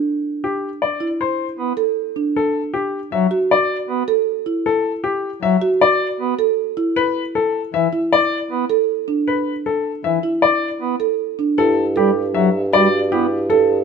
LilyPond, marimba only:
\new Staff \with { instrumentName = "Marimba" } { \time 6/4 \key d \mixolydian \tempo 4 = 156 r2 r8 e'8 r4. a'8 r8 d'8 | r2 r8 fis'8 r4. a'8 r8 e'8 | r2 r8 fis'8 r4. a'8 r8 e'8 | r2 r8 e'8 r4. a'8 r8 d'8 |
r2 r8 e'8 r4. a'8 r8 d'8 | \key g \major e'8 r8 a'8 r4. fis'8 r8 e'8 r8 a'8 r8 | }